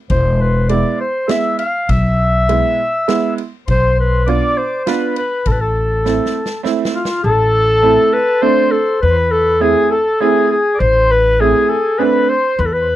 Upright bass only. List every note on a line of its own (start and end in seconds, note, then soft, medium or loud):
0.10 0.82 E1 loud
1.89 2.60 B1 loud
3.68 4.39 B1 medium
5.46 6.18 A1 medium
7.24 7.96 A1 medium
9.03 9.74 E2 medium
10.80 11.52 A1 loud
12.59 12.96 E2 loud